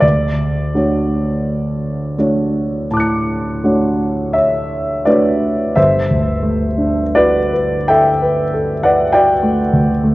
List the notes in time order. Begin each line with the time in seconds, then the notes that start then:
0.00 D2 D5
0.74 A3 D4 F#4 C#5
2.18 A3 D4 F#4 C#5
2.91 A2 A5 D6
2.97 F#6 C#7
3.64 A3 D4 F#4 C#5
4.33 C#5 E5
5.05 A3 D4 F#4 B4 C#5 D5
5.75 G1 C5 E5
6.10 D2
6.42 A3
6.78 D4
7.15 F#4 B4 D5
7.53 B4
7.88 A4 E5 G5
8.22 B4
8.54 A4
8.83 B4 D5 F#5
9.13 F#4 D5 G5
9.43 A3
9.73 D2
10.04 A3